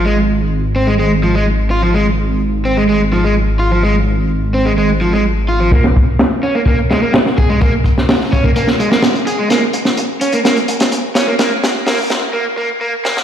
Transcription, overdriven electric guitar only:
\new Staff \with { instrumentName = "Overdriven electric guitar" } { \time 4/4 \key aes \mixolydian \tempo 4 = 127 aes16 r4 r16 c'16 aes16 aes16 r16 f16 aes16 r8 f'16 f16 | aes16 r4 r16 c'16 aes16 aes16 r16 f16 aes16 r8 f'16 f16 | aes16 r4 r16 c'16 aes16 aes16 r16 f16 aes16 r8 f'16 f16 | bes16 r4 r16 des'16 bes16 bes16 r16 aes16 bes16 r8 aes'16 aes16 |
bes16 r4 r16 des'16 bes16 bes16 r16 aes16 bes16 r8 aes'16 aes16 | bes16 r4 r16 des'16 bes16 bes16 r4 r16 des'16 bes16 | bes16 r8. bes16 r8. bes16 r16 bes16 r16 bes16 r16 bes16 r16 | }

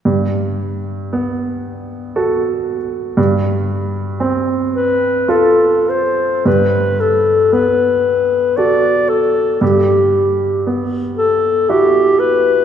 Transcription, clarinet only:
\new Staff \with { instrumentName = "Clarinet" } { \time 3/4 \key g \major \tempo 4 = 58 r2. | r4. b'8 a'8 c''8 | b'8 a'8 b'4 d''8 a'8 | g'4 r8 a'8 g'8 b'8 | }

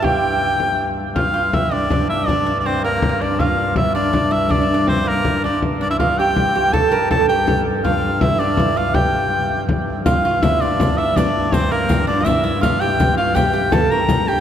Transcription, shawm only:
\new Staff \with { instrumentName = "Shawm" } { \time 6/8 \key g \dorian \tempo 4. = 108 g''2~ g''8 r8 | f''4 e''8 d''4 e''8 | d''8.~ d''32 d''32 c''8 bes'4 d''8 | f''4 e''8 d''4 e''8 |
d''4 c''8 bes'4 d''8 | r8 d''16 e''16 f''8 g''4. | a''4 a''8 g''4 r8 | f''4 e''8 d''4 f''8 |
g''2 r4 | f''4 e''8 d''4 e''8 | d''4 c''8 bes'4 d''8 | e''4 f''8 g''4 f''8 |
g''4 a''8 bes''4 g''8 | }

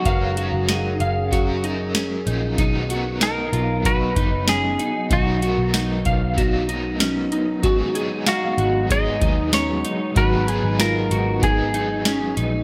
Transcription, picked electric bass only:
\new Staff \with { instrumentName = "Picked electric bass" } { \clef bass \time 4/4 \key b \lydian \tempo 4 = 95 fis,,8. fis,,8. fis,,2 ais,,8 | b,,4. b,,4 fis,,4 r8 | b,,8. b,,8. b,,2 fis,,8 | gis,,4. gis,,4 dis,4 r8 |
gis,,8. gis,,8. gis,,2 ais,,8 | }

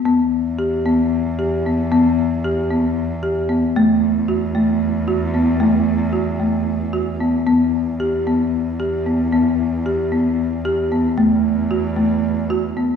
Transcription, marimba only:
\new Staff \with { instrumentName = "Marimba" } { \time 7/8 \key e \minor \tempo 4 = 114 b4 g'8 b4 g'8 b8 | b4 g'8 b4 g'8 b8 | a4 fis'8 a4 fis'8 b8 | a4 fis'8 a4 fis'8 b8 |
b4 g'8 b4 g'8 b8 | b4 g'8 b4 g'8 b8 | a4 fis'8 a4 fis'8 b8 | }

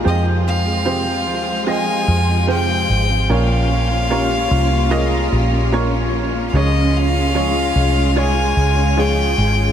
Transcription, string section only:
\new Staff \with { instrumentName = "String section" } { \time 4/4 \key f \minor \tempo 4 = 74 << { <aes f'>1 | <bes f'>1 | <aes f'>1 | } \\ { f1 | des'1~ | des'1 | } >> }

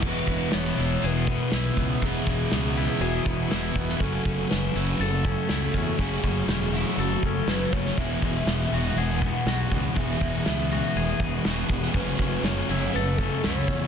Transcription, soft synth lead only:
\new Staff \with { instrumentName = "Soft synth lead" } { \time 4/4 \key e \major \tempo 4 = 121 b'4 cis''4 b'2 | gis'2 fis'4 b'8. r16 | a'4 b'4 a'2 | gis'2 fis'8 a'8 b'8 cis''8 |
e''2 fis''2 | e''4 e''8 e''2 r8 | b'4 cis''4 b'8 a'8 cis''4 | }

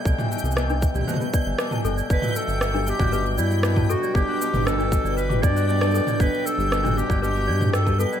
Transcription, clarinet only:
\new Staff \with { instrumentName = "Clarinet" } { \time 4/4 \key g \lydian \tempo 4 = 117 r1 | b'8 a'4 g'8 g'8 e'4 fis'8 | g'4 a'4 b'8 d''8 d''4 | b'8 a'4 g'8 g'4 a'8 b'8 | }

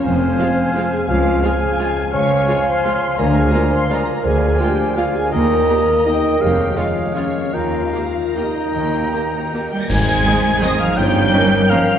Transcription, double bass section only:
\new Staff \with { instrumentName = "Double bass section" } { \clef bass \time 3/4 \key ees \mixolydian \tempo 4 = 165 f,,4 r2 | des,4 r2 | des,4 r2 | d,4 r2 |
d,4 r2 | ees,4 r2 | f,,4 r2 | ees,4 r2 |
ees,4 r2 | aes,,4 r2 | g,,4 r2 | }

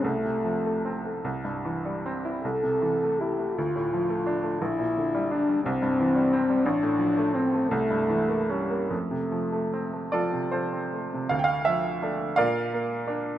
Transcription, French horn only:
\new Staff \with { instrumentName = "French horn" } { \time 6/8 \key f \major \tempo 4. = 54 a4. r4. | a'4 g'8 f'4. | e'4 d'8 c'4. | d'4 c'8 a4 g8 |
a4. r4. | \key d \minor r2. | }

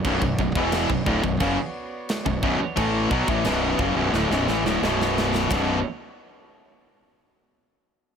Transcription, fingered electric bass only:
\new Staff \with { instrumentName = "Fingered electric bass" } { \clef bass \time 4/4 \key b \minor \tempo 4 = 88 b,,,16 b,,,16 b,,,16 e,,8 b,,,16 d,,16 b,,,16 fis,,16 r4 b,,,16 b,,,16 r16 | a,,8 b,,16 a,,16 b,,,8 fis,,16 b,,,16 d,,16 b,,,16 a,,16 d,,16 b,,,4 | b,,,8 r2. r8 | }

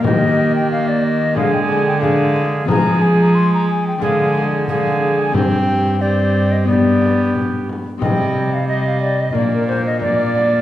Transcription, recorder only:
\new Staff \with { instrumentName = "Recorder" } { \time 4/4 \key g \phrygian \tempo 4 = 90 g'2 aes'4 aes'4 | aes'4. r8 aes'4 aes'4 | g'4 g'4 g'4. r8 | ees''4 ees''4 d''4 d''4 | }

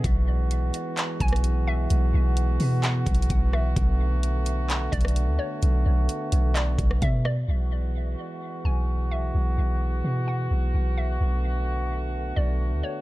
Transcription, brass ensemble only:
\new Staff \with { instrumentName = "Brass ensemble" } { \clef bass \time 4/4 \key e \mixolydian \tempo 4 = 129 << { <b fis'>1~ | <b fis'>1~ | <b fis'>1~ | <b fis'>1 |
<b fis'>1~ | <b fis'>1~ | <b fis'>1 | } \\ { <e gis>1~ | <e gis>1 | <d a>1~ | <d a>1 |
<e gis>1~ | <e gis>1 | <d a>1 | } >> }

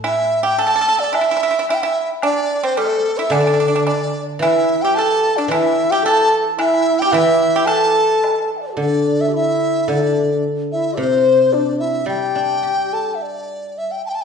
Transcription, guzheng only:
\new Staff \with { instrumentName = "Guzheng" } { \clef bass \time 2/4 \tempo 4 = 109 a,4 r4 | r2 | r2 | d2 |
e2 | e2~ | e4 e4~ | e2 |
d2 | d2 | c2 | g8 d'8 g'4~ |
g'4 r4 | }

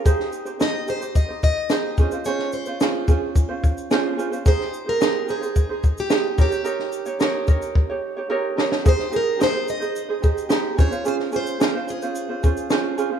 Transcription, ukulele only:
\new Staff \with { instrumentName = "Ukulele" } { \time 4/4 \key aes \major \tempo 4 = 109 <ees' g' aes' c''>8. <ees' g' c''>16 <ees' g' aes' c''>8 <ees' g' aes' c''>16 <ees' g' c''>8 <ees' g' c''>8. <ees' g' aes' c''>8 <des' f' aes' c''>16 <des' f' c''>16 | <des' f' aes' c''>8. <des' f' c''>16 <des' f' aes' c''>8 <des' f' aes' c''>8. <des' f' c''>8. <des' f' aes' c''>8 <des' f' aes' c''>16 <des' f' c''>16 | <ees' g' aes' c''>8. <ees' aes' c''>16 <ees' g' aes' c''>8 <ees' g' aes' c''>16 <ees' aes' c''>8 <ees' aes' c''>8. <ees' g' aes' c''>8 <ees' g' bes' des''>16 <ees' g' des''>16 | <ees' g' bes' des''>8. <ees' g' des''>16 <ees' g' bes' des''>8 <ees' g' bes' des''>8. <ees' g' des''>8 <ees' g' des''>16 <ees' g' bes' des''>8 <ees' g' bes' des''>16 <ees' g' des''>16 |
<ees' g' aes' c''>8 <ees' g' aes' c''>8 <ees' g' aes' c''>16 <ees' aes' c''>8 <ees' aes' c''>8 <ees' aes' c''>16 <ees' g' aes' c''>8 <ees' g' aes' c''>8 <des' f' aes' c''>16 <des' f' c''>16 | <des' f' aes' c''>8 <des' f' aes' c''>8 <des' f' aes' c''>16 <des' f' c''>8 <des' f' c''>8 <des' f' c''>16 <des' f' aes' c''>8 <des' f' aes' c''>8 <des' f' aes' c''>16 <des' f' c''>16 | }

